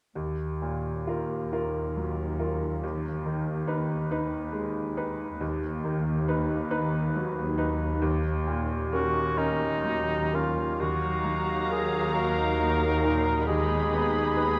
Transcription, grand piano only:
0, 0, Header, 1, 2, 480
1, 0, Start_track
1, 0, Key_signature, -6, "minor"
1, 0, Tempo, 902256
1, 86, Time_signature, 6, 3, 24, 8
1, 1045, Tempo, 863309
1, 4405, Tempo, 900901
1, 4885, Tempo, 950872
1, 5845, Tempo, 888889
1, 7889, End_track
2, 0, Start_track
2, 0, Title_t, "Grand piano"
2, 0, Program_c, 0, 0
2, 82, Note_on_c, 0, 39, 29
2, 176, Control_c, 0, 64, 127
2, 329, Note_on_c, 0, 46, 24
2, 571, Note_on_c, 0, 65, 22
2, 579, Note_on_c, 0, 70, 25
2, 714, Note_off_c, 0, 46, 0
2, 788, Note_off_c, 0, 65, 0
2, 792, Note_off_c, 0, 70, 0
2, 813, Note_on_c, 0, 65, 25
2, 813, Note_on_c, 0, 70, 30
2, 1026, Note_off_c, 0, 65, 0
2, 1026, Note_off_c, 0, 70, 0
2, 1047, Note_on_c, 0, 54, 23
2, 1283, Note_on_c, 0, 70, 27
2, 1285, Note_on_c, 0, 65, 24
2, 1431, Note_off_c, 0, 54, 0
2, 1501, Note_off_c, 0, 39, 0
2, 1501, Note_off_c, 0, 65, 0
2, 1501, Note_off_c, 0, 70, 0
2, 1528, Note_on_c, 0, 39, 31
2, 1534, Control_c, 0, 64, 0
2, 1638, Control_c, 0, 64, 127
2, 1764, Note_on_c, 0, 51, 26
2, 1995, Note_on_c, 0, 63, 27
2, 1999, Note_on_c, 0, 71, 29
2, 2139, Note_off_c, 0, 51, 0
2, 2210, Note_off_c, 0, 63, 0
2, 2212, Note_off_c, 0, 71, 0
2, 2239, Note_on_c, 0, 63, 33
2, 2241, Note_on_c, 0, 71, 32
2, 2454, Note_off_c, 0, 63, 0
2, 2456, Note_off_c, 0, 71, 0
2, 2470, Note_on_c, 0, 56, 28
2, 2717, Note_on_c, 0, 63, 29
2, 2718, Note_on_c, 0, 71, 31
2, 2862, Note_off_c, 0, 56, 0
2, 2939, Note_off_c, 0, 63, 0
2, 2939, Note_off_c, 0, 71, 0
2, 2941, Note_off_c, 0, 39, 0
2, 2958, Note_on_c, 0, 39, 37
2, 2970, Control_c, 0, 64, 0
2, 3069, Control_c, 0, 64, 127
2, 3203, Note_on_c, 0, 51, 32
2, 3446, Note_on_c, 0, 63, 32
2, 3448, Note_on_c, 0, 71, 34
2, 3585, Note_off_c, 0, 51, 0
2, 3661, Note_off_c, 0, 63, 0
2, 3662, Note_off_c, 0, 71, 0
2, 3681, Note_on_c, 0, 63, 36
2, 3684, Note_on_c, 0, 71, 40
2, 3898, Note_off_c, 0, 63, 0
2, 3900, Note_off_c, 0, 71, 0
2, 3933, Note_on_c, 0, 54, 33
2, 4166, Note_on_c, 0, 63, 33
2, 4171, Note_on_c, 0, 71, 35
2, 4314, Note_off_c, 0, 54, 0
2, 4383, Note_off_c, 0, 39, 0
2, 4387, Note_off_c, 0, 63, 0
2, 4389, Note_off_c, 0, 71, 0
2, 4410, Note_on_c, 0, 39, 43
2, 4416, Control_c, 0, 64, 0
2, 4509, Control_c, 0, 64, 127
2, 4653, Note_on_c, 0, 46, 35
2, 4892, Note_on_c, 0, 61, 31
2, 4895, Note_on_c, 0, 70, 31
2, 5029, Note_off_c, 0, 46, 0
2, 5101, Note_off_c, 0, 61, 0
2, 5103, Note_off_c, 0, 70, 0
2, 5120, Note_on_c, 0, 61, 33
2, 5120, Note_on_c, 0, 70, 35
2, 5339, Note_off_c, 0, 61, 0
2, 5339, Note_off_c, 0, 70, 0
2, 5357, Note_on_c, 0, 54, 27
2, 5602, Note_on_c, 0, 61, 25
2, 5603, Note_on_c, 0, 70, 26
2, 5752, Note_off_c, 0, 54, 0
2, 5823, Note_off_c, 0, 61, 0
2, 5823, Note_off_c, 0, 70, 0
2, 5827, Note_off_c, 0, 39, 0
2, 5838, Note_on_c, 0, 39, 33
2, 5855, Control_c, 0, 64, 0
2, 5933, Control_c, 0, 64, 127
2, 6079, Note_on_c, 0, 54, 26
2, 6330, Note_on_c, 0, 70, 27
2, 6470, Note_off_c, 0, 54, 0
2, 6566, Note_on_c, 0, 66, 33
2, 6712, Note_off_c, 0, 70, 0
2, 6802, Note_on_c, 0, 63, 27
2, 6947, Note_off_c, 0, 66, 0
2, 7044, Note_on_c, 0, 46, 25
2, 7187, Note_off_c, 0, 63, 0
2, 7260, Note_off_c, 0, 39, 0
2, 7286, Note_off_c, 0, 46, 0
2, 7292, Note_on_c, 0, 39, 33
2, 7297, Control_c, 0, 64, 0
2, 7386, Control_c, 0, 64, 127
2, 7530, Note_on_c, 0, 59, 28
2, 7767, Note_on_c, 0, 71, 30
2, 7889, Note_off_c, 0, 39, 0
2, 7889, Note_off_c, 0, 59, 0
2, 7889, Note_off_c, 0, 71, 0
2, 7889, End_track
0, 0, End_of_file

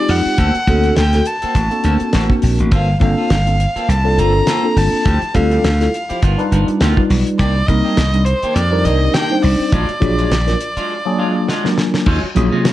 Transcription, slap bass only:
0, 0, Header, 1, 3, 480
1, 0, Start_track
1, 0, Tempo, 584226
1, 320, Time_signature, 4, 2, 24, 8
1, 10458, End_track
2, 0, Start_track
2, 0, Title_t, "Slap bass"
2, 0, Program_c, 0, 36
2, 73, Note_on_c, 0, 41, 84
2, 178, Note_off_c, 0, 41, 0
2, 314, Note_on_c, 0, 38, 96
2, 419, Note_off_c, 0, 38, 0
2, 550, Note_on_c, 0, 38, 79
2, 738, Note_off_c, 0, 38, 0
2, 805, Note_on_c, 0, 38, 63
2, 987, Note_off_c, 0, 38, 0
2, 1275, Note_on_c, 0, 33, 81
2, 1379, Note_off_c, 0, 33, 0
2, 1514, Note_on_c, 0, 38, 74
2, 1618, Note_off_c, 0, 38, 0
2, 1759, Note_on_c, 0, 33, 77
2, 1861, Note_off_c, 0, 33, 0
2, 1996, Note_on_c, 0, 34, 63
2, 2117, Note_off_c, 0, 34, 0
2, 2134, Note_on_c, 0, 33, 72
2, 2229, Note_off_c, 0, 33, 0
2, 2233, Note_on_c, 0, 31, 94
2, 2419, Note_off_c, 0, 31, 0
2, 2476, Note_on_c, 0, 31, 75
2, 2579, Note_off_c, 0, 31, 0
2, 2713, Note_on_c, 0, 31, 70
2, 3001, Note_off_c, 0, 31, 0
2, 3192, Note_on_c, 0, 36, 77
2, 3432, Note_on_c, 0, 31, 80
2, 3445, Note_off_c, 0, 36, 0
2, 3618, Note_off_c, 0, 31, 0
2, 3913, Note_on_c, 0, 31, 78
2, 4017, Note_off_c, 0, 31, 0
2, 4156, Note_on_c, 0, 38, 82
2, 4258, Note_off_c, 0, 38, 0
2, 4393, Note_on_c, 0, 38, 76
2, 4578, Note_off_c, 0, 38, 0
2, 4637, Note_on_c, 0, 38, 76
2, 4820, Note_off_c, 0, 38, 0
2, 5117, Note_on_c, 0, 31, 81
2, 5218, Note_off_c, 0, 31, 0
2, 5354, Note_on_c, 0, 31, 73
2, 5457, Note_off_c, 0, 31, 0
2, 5596, Note_on_c, 0, 38, 88
2, 5698, Note_off_c, 0, 38, 0
2, 5835, Note_on_c, 0, 35, 80
2, 5937, Note_off_c, 0, 35, 0
2, 6074, Note_on_c, 0, 36, 95
2, 6258, Note_off_c, 0, 36, 0
2, 6314, Note_on_c, 0, 36, 84
2, 6417, Note_off_c, 0, 36, 0
2, 6553, Note_on_c, 0, 36, 74
2, 6840, Note_off_c, 0, 36, 0
2, 7029, Note_on_c, 0, 41, 81
2, 7271, Note_on_c, 0, 36, 78
2, 7283, Note_off_c, 0, 41, 0
2, 7456, Note_off_c, 0, 36, 0
2, 7754, Note_on_c, 0, 36, 74
2, 7856, Note_off_c, 0, 36, 0
2, 7991, Note_on_c, 0, 34, 89
2, 8094, Note_off_c, 0, 34, 0
2, 8232, Note_on_c, 0, 34, 73
2, 8417, Note_off_c, 0, 34, 0
2, 8471, Note_on_c, 0, 34, 69
2, 8656, Note_off_c, 0, 34, 0
2, 9910, Note_on_c, 0, 39, 84
2, 10014, Note_off_c, 0, 39, 0
2, 10156, Note_on_c, 0, 34, 88
2, 10259, Note_off_c, 0, 34, 0
2, 10288, Note_on_c, 0, 48, 72
2, 10458, Note_off_c, 0, 48, 0
2, 10458, End_track
3, 0, Start_track
3, 0, Title_t, "Muted slap bass strokes"
3, 211, Note_on_c, 9, 29, 35
3, 293, Note_off_c, 9, 29, 0
3, 453, Note_on_c, 9, 29, 29
3, 535, Note_off_c, 9, 29, 0
3, 1179, Note_on_c, 9, 29, 35
3, 1261, Note_off_c, 9, 29, 0
3, 1651, Note_on_c, 9, 29, 32
3, 1733, Note_off_c, 9, 29, 0
3, 1885, Note_on_c, 9, 29, 33
3, 1967, Note_off_c, 9, 29, 0
3, 3088, Note_on_c, 9, 29, 31
3, 3170, Note_off_c, 9, 29, 0
3, 4050, Note_on_c, 9, 29, 34
3, 4132, Note_off_c, 9, 29, 0
3, 4290, Note_on_c, 9, 29, 31
3, 4372, Note_off_c, 9, 29, 0
3, 5017, Note_on_c, 9, 29, 35
3, 5099, Note_off_c, 9, 29, 0
3, 6926, Note_on_c, 9, 29, 35
3, 7008, Note_off_c, 9, 29, 0
3, 7885, Note_on_c, 9, 29, 30
3, 7967, Note_off_c, 9, 29, 0
3, 8846, Note_on_c, 9, 29, 32
3, 8928, Note_off_c, 9, 29, 0
3, 10051, Note_on_c, 9, 29, 32
3, 10134, Note_off_c, 9, 29, 0
3, 10458, End_track
0, 0, End_of_file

